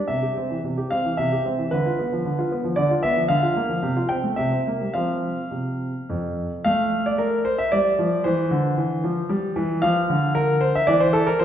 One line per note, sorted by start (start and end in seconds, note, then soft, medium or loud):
0.08 0.23 C3 soft
0.08 0.57 E5 medium
0.23 0.38 G4 soft
0.37 0.52 C4 soft
0.51 0.65 E3 soft
0.64 0.77 C3 soft
0.77 0.92 G4 soft
0.91 1.06 C4 soft
0.91 1.15 F5 medium
1.05 1.19 E3 soft
1.17 1.32 C3 soft
1.17 1.72 E5 medium
1.32 1.46 G4 soft
1.46 1.60 C4 soft
1.59 1.72 E3 soft
1.71 1.86 D3 soft
1.71 2.51 B4 medium
1.86 2.00 F4 soft
1.99 2.13 B3 soft
2.13 2.26 F3 soft
2.25 2.38 D3 soft
2.39 2.52 F4 soft
2.52 2.66 B3 soft
2.64 2.78 F3 soft
2.76 2.90 D3 medium
2.76 2.92 D5 medium
2.91 3.05 F4 soft
3.03 3.18 B3 soft
3.03 3.19 E5 medium
3.16 3.30 F3 soft
3.28 3.43 D3 medium
3.28 4.05 F5 medium
3.43 3.57 F4 soft
3.56 3.70 A#3 soft
3.69 3.83 F3 soft
3.83 3.96 C3 medium
3.97 4.11 F4 soft
4.09 4.24 C4 soft
4.09 4.34 G5 medium
4.24 4.37 A3 soft
4.36 4.51 C3 medium
4.36 4.93 E5 medium
4.51 4.66 C4 soft
4.67 4.81 A#3 soft
4.81 4.95 G3 soft
4.94 5.35 F3 soft
4.94 5.40 C4 soft
4.94 5.40 F4 soft
4.94 6.33 F5 medium
5.51 5.91 C3 soft
6.09 6.49 F2 soft
6.64 7.43 A3 medium
6.64 7.05 F5 medium
7.06 7.19 D5 medium
7.18 7.45 A#4 medium
7.45 7.59 C5 medium
7.58 7.72 E5 medium
7.72 7.98 G3 medium
7.72 8.21 D5 medium
7.99 8.24 F3 medium
8.24 8.50 E3 medium
8.24 9.52 C5 medium
8.51 8.76 D3 medium
8.77 9.03 E3 medium
9.04 9.29 F3 medium
9.29 9.55 G3 medium
9.56 9.81 E3 medium
9.82 10.08 F3 medium
9.82 10.35 F5 medium
10.10 10.66 D3 medium
10.35 10.59 A#4 medium
10.61 10.75 C5 medium
10.75 10.88 E5 medium
10.87 11.26 E3 medium
10.87 11.01 D5 loud
11.00 11.14 C5 medium
11.13 11.27 A4 medium
11.27 11.40 A#4 medium
11.39 11.45 F3 medium
11.39 11.45 C5 medium